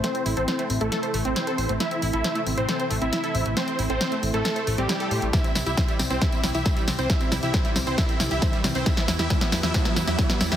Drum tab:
HH |xxoxxxoxxxoxxxox|xxoxxxoxxxoxxxox|xxoxxxoxxxoxxxox|xxoxxxoxxxoxxxox|
TB |----------------|----------------|----------------|xxxxxxxxxxxxxxxx|
SD |o---o---o---o---|o---o---o---o---|o---o---o---o---|o-o-o-o-o-o-o-o-|
BD |----------------|----------------|----------------|o---o---o---o---|

HH |xxoxxxoxxxoxxxox|xxoxxxoxxxoxxxox|
TB |xxxxxxxxxxxxxxxx|xxxxxxxxxxxxxxx-|
SD |o-o-o-o-o-o-o-o-|oooooooooooooooo|
BD |o---o---o---o---|o---o---o---o---|